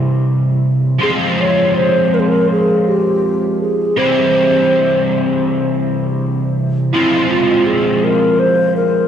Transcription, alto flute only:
0, 0, Header, 1, 2, 480
1, 0, Start_track
1, 0, Key_signature, -4, "minor"
1, 0, Tempo, 739827
1, 658, Time_signature, 4, 2, 24, 8
1, 5890, End_track
2, 0, Start_track
2, 0, Title_t, "Alto flute"
2, 0, Program_c, 0, 73
2, 666, Note_on_c, 0, 68, 87
2, 720, Note_off_c, 0, 68, 0
2, 910, Note_on_c, 0, 73, 76
2, 1128, Note_off_c, 0, 73, 0
2, 1147, Note_on_c, 0, 72, 93
2, 1389, Note_on_c, 0, 70, 81
2, 1399, Note_off_c, 0, 72, 0
2, 1426, Note_on_c, 0, 68, 62
2, 1436, Note_off_c, 0, 70, 0
2, 1480, Note_on_c, 0, 70, 92
2, 1490, Note_off_c, 0, 68, 0
2, 1624, Note_off_c, 0, 70, 0
2, 1633, Note_on_c, 0, 68, 88
2, 1867, Note_on_c, 0, 67, 82
2, 1876, Note_off_c, 0, 68, 0
2, 2339, Note_off_c, 0, 67, 0
2, 2343, Note_on_c, 0, 68, 68
2, 2583, Note_on_c, 0, 72, 88
2, 2593, Note_off_c, 0, 68, 0
2, 3540, Note_off_c, 0, 72, 0
2, 4493, Note_on_c, 0, 64, 86
2, 4718, Note_off_c, 0, 64, 0
2, 4737, Note_on_c, 0, 65, 68
2, 4971, Note_on_c, 0, 68, 74
2, 4981, Note_off_c, 0, 65, 0
2, 5217, Note_on_c, 0, 70, 88
2, 5227, Note_off_c, 0, 68, 0
2, 5445, Note_on_c, 0, 72, 101
2, 5455, Note_off_c, 0, 70, 0
2, 5682, Note_off_c, 0, 72, 0
2, 5686, Note_on_c, 0, 70, 89
2, 5890, Note_off_c, 0, 70, 0
2, 5890, End_track
0, 0, End_of_file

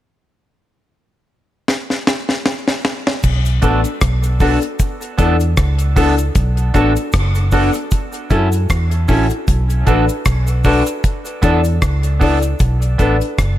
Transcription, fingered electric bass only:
0, 0, Header, 1, 2, 480
1, 0, Start_track
1, 0, Key_signature, 2, "minor"
1, 0, Tempo, 780234
1, 76, Time_signature, 4, 2, 24, 8
1, 8357, End_track
2, 0, Start_track
2, 0, Title_t, "Fingered electric bass"
2, 0, Program_c, 0, 33
2, 1996, Note_on_c, 0, 35, 94
2, 2210, Note_off_c, 0, 35, 0
2, 2236, Note_on_c, 0, 33, 89
2, 2356, Note_off_c, 0, 33, 0
2, 2474, Note_on_c, 0, 35, 91
2, 2810, Note_off_c, 0, 35, 0
2, 3195, Note_on_c, 0, 40, 102
2, 3409, Note_off_c, 0, 40, 0
2, 3434, Note_on_c, 0, 37, 92
2, 3864, Note_off_c, 0, 37, 0
2, 3913, Note_on_c, 0, 35, 101
2, 4128, Note_off_c, 0, 35, 0
2, 4154, Note_on_c, 0, 33, 93
2, 4274, Note_off_c, 0, 33, 0
2, 4393, Note_on_c, 0, 30, 92
2, 4729, Note_off_c, 0, 30, 0
2, 5115, Note_on_c, 0, 42, 95
2, 5329, Note_off_c, 0, 42, 0
2, 5354, Note_on_c, 0, 40, 90
2, 5569, Note_off_c, 0, 40, 0
2, 5595, Note_on_c, 0, 33, 92
2, 5715, Note_off_c, 0, 33, 0
2, 5835, Note_on_c, 0, 35, 104
2, 6049, Note_off_c, 0, 35, 0
2, 6078, Note_on_c, 0, 33, 94
2, 6197, Note_off_c, 0, 33, 0
2, 6317, Note_on_c, 0, 35, 92
2, 6652, Note_off_c, 0, 35, 0
2, 7034, Note_on_c, 0, 40, 100
2, 7249, Note_off_c, 0, 40, 0
2, 7276, Note_on_c, 0, 37, 94
2, 7706, Note_off_c, 0, 37, 0
2, 7757, Note_on_c, 0, 35, 99
2, 7971, Note_off_c, 0, 35, 0
2, 7997, Note_on_c, 0, 33, 88
2, 8117, Note_off_c, 0, 33, 0
2, 8238, Note_on_c, 0, 30, 89
2, 8357, Note_off_c, 0, 30, 0
2, 8357, End_track
0, 0, End_of_file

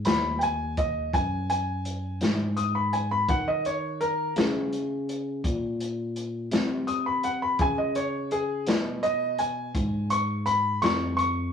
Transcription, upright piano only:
0, 0, Header, 1, 2, 480
1, 0, Start_track
1, 0, Tempo, 717703
1, 2200, Time_signature, 12, 3, 24, 8
1, 7709, End_track
2, 0, Start_track
2, 0, Title_t, "Upright piano"
2, 0, Program_c, 0, 0
2, 36, Note_on_c, 0, 83, 82
2, 260, Note_on_c, 0, 79, 56
2, 271, Note_off_c, 0, 83, 0
2, 286, Note_on_c, 0, 80, 80
2, 287, Note_off_c, 0, 79, 0
2, 516, Note_off_c, 0, 80, 0
2, 521, Note_on_c, 0, 75, 72
2, 753, Note_off_c, 0, 75, 0
2, 762, Note_on_c, 0, 80, 77
2, 991, Note_off_c, 0, 80, 0
2, 1002, Note_on_c, 0, 80, 76
2, 1467, Note_off_c, 0, 80, 0
2, 1716, Note_on_c, 0, 87, 67
2, 1830, Note_off_c, 0, 87, 0
2, 1839, Note_on_c, 0, 83, 73
2, 1951, Note_off_c, 0, 83, 0
2, 1960, Note_on_c, 0, 80, 65
2, 2072, Note_off_c, 0, 80, 0
2, 2082, Note_on_c, 0, 83, 82
2, 2193, Note_off_c, 0, 83, 0
2, 2203, Note_on_c, 0, 78, 79
2, 2314, Note_off_c, 0, 78, 0
2, 2326, Note_on_c, 0, 75, 77
2, 2435, Note_off_c, 0, 75, 0
2, 2448, Note_on_c, 0, 73, 71
2, 2677, Note_off_c, 0, 73, 0
2, 2679, Note_on_c, 0, 70, 84
2, 2912, Note_off_c, 0, 70, 0
2, 4596, Note_on_c, 0, 87, 68
2, 4709, Note_off_c, 0, 87, 0
2, 4723, Note_on_c, 0, 83, 74
2, 4833, Note_off_c, 0, 83, 0
2, 4842, Note_on_c, 0, 78, 73
2, 4952, Note_off_c, 0, 78, 0
2, 4964, Note_on_c, 0, 83, 78
2, 5074, Note_off_c, 0, 83, 0
2, 5092, Note_on_c, 0, 80, 84
2, 5198, Note_off_c, 0, 80, 0
2, 5204, Note_on_c, 0, 75, 67
2, 5313, Note_off_c, 0, 75, 0
2, 5322, Note_on_c, 0, 73, 72
2, 5554, Note_off_c, 0, 73, 0
2, 5563, Note_on_c, 0, 68, 86
2, 5794, Note_off_c, 0, 68, 0
2, 6038, Note_on_c, 0, 75, 92
2, 6271, Note_off_c, 0, 75, 0
2, 6279, Note_on_c, 0, 80, 73
2, 6744, Note_off_c, 0, 80, 0
2, 6758, Note_on_c, 0, 85, 77
2, 6991, Note_off_c, 0, 85, 0
2, 6994, Note_on_c, 0, 83, 92
2, 7229, Note_off_c, 0, 83, 0
2, 7236, Note_on_c, 0, 85, 85
2, 7458, Note_off_c, 0, 85, 0
2, 7468, Note_on_c, 0, 85, 81
2, 7709, Note_off_c, 0, 85, 0
2, 7709, End_track
0, 0, End_of_file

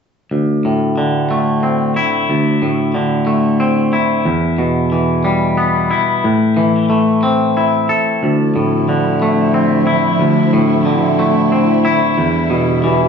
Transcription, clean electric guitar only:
0, 0, Header, 1, 2, 480
1, 0, Start_track
1, 0, Tempo, 659341
1, 222, Time_signature, 6, 3, 24, 8
1, 9525, End_track
2, 0, Start_track
2, 0, Title_t, "Clean electric guitar"
2, 0, Program_c, 0, 27
2, 228, Note_on_c, 0, 38, 35
2, 474, Note_on_c, 0, 45, 33
2, 710, Note_on_c, 0, 50, 31
2, 952, Note_on_c, 0, 57, 31
2, 1188, Note_on_c, 0, 60, 31
2, 1427, Note_off_c, 0, 38, 0
2, 1429, Note_on_c, 0, 64, 34
2, 1670, Note_off_c, 0, 45, 0
2, 1672, Note_on_c, 0, 38, 36
2, 1909, Note_off_c, 0, 50, 0
2, 1909, Note_on_c, 0, 45, 31
2, 2144, Note_on_c, 0, 50, 33
2, 2149, Note_off_c, 0, 57, 0
2, 2379, Note_on_c, 0, 57, 35
2, 2387, Note_off_c, 0, 60, 0
2, 2620, Note_on_c, 0, 60, 38
2, 2858, Note_off_c, 0, 64, 0
2, 2860, Note_on_c, 0, 64, 37
2, 2870, Note_off_c, 0, 38, 0
2, 3097, Note_on_c, 0, 40, 40
2, 3103, Note_off_c, 0, 57, 0
2, 3103, Note_off_c, 0, 60, 0
2, 3106, Note_off_c, 0, 50, 0
2, 3108, Note_off_c, 0, 45, 0
2, 3338, Note_on_c, 0, 47, 32
2, 3583, Note_on_c, 0, 52, 33
2, 3819, Note_on_c, 0, 55, 37
2, 4058, Note_on_c, 0, 59, 39
2, 4297, Note_off_c, 0, 64, 0
2, 4300, Note_on_c, 0, 64, 35
2, 4302, Note_off_c, 0, 40, 0
2, 4543, Note_off_c, 0, 47, 0
2, 4543, Note_off_c, 0, 55, 0
2, 4543, Note_off_c, 0, 59, 0
2, 4545, Note_on_c, 0, 45, 34
2, 4782, Note_off_c, 0, 52, 0
2, 4782, Note_on_c, 0, 52, 35
2, 5021, Note_on_c, 0, 57, 32
2, 5263, Note_on_c, 0, 60, 38
2, 5511, Note_off_c, 0, 64, 0
2, 5511, Note_on_c, 0, 64, 37
2, 5746, Note_off_c, 0, 45, 0
2, 5746, Note_on_c, 0, 69, 35
2, 5990, Note_on_c, 0, 38, 36
2, 6012, Note_off_c, 0, 52, 0
2, 6012, Note_off_c, 0, 60, 0
2, 6012, Note_off_c, 0, 64, 0
2, 6229, Note_on_c, 0, 45, 34
2, 6467, Note_off_c, 0, 57, 0
2, 6470, Note_on_c, 0, 50, 34
2, 6713, Note_on_c, 0, 57, 36
2, 6947, Note_on_c, 0, 60, 32
2, 7181, Note_off_c, 0, 69, 0
2, 7184, Note_on_c, 0, 64, 38
2, 7187, Note_off_c, 0, 38, 0
2, 7422, Note_on_c, 0, 38, 35
2, 7427, Note_off_c, 0, 45, 0
2, 7667, Note_off_c, 0, 50, 0
2, 7667, Note_on_c, 0, 45, 35
2, 7901, Note_on_c, 0, 50, 35
2, 7908, Note_off_c, 0, 57, 0
2, 8145, Note_off_c, 0, 60, 0
2, 8148, Note_on_c, 0, 57, 37
2, 8387, Note_on_c, 0, 60, 37
2, 8622, Note_off_c, 0, 38, 0
2, 8622, Note_off_c, 0, 64, 0
2, 8625, Note_on_c, 0, 64, 43
2, 8861, Note_off_c, 0, 50, 0
2, 8864, Note_off_c, 0, 45, 0
2, 8864, Note_on_c, 0, 40, 42
2, 8865, Note_off_c, 0, 57, 0
2, 8865, Note_off_c, 0, 60, 0
2, 9102, Note_on_c, 0, 47, 34
2, 9347, Note_on_c, 0, 52, 35
2, 9525, Note_off_c, 0, 40, 0
2, 9525, Note_off_c, 0, 47, 0
2, 9525, Note_off_c, 0, 52, 0
2, 9525, Note_off_c, 0, 64, 0
2, 9525, End_track
0, 0, End_of_file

